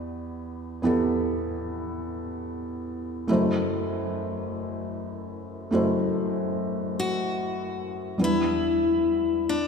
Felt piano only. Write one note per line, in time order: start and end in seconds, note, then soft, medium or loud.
0.00 0.80 E2 medium
0.00 0.80 E3 medium
0.00 0.80 B3 medium
0.00 0.80 E4 medium
0.00 0.81 G4 soft
0.00 0.81 D5 medium
0.82 3.24 E2 medium
0.82 3.24 E3 medium
0.82 3.23 B3 medium
0.82 3.24 E4 medium
0.82 3.25 G4 medium
0.82 3.25 A4 medium
3.27 5.69 F#1 medium
3.27 5.68 F#2 medium
3.27 5.68 A3 medium
3.27 5.68 E4 medium
3.27 5.69 F#4 medium
3.27 5.69 C5 medium
5.71 8.15 F#1 medium
5.71 8.15 F#2 medium
5.71 8.14 A3 medium
5.71 8.15 E4 medium
5.71 8.16 F#4 medium
5.71 8.16 C5 medium
8.18 9.68 E2 soft
8.18 9.68 E3 soft
8.18 9.68 G3 soft
8.18 9.68 D4 soft
8.18 9.68 E4 soft
8.18 9.68 B4 medium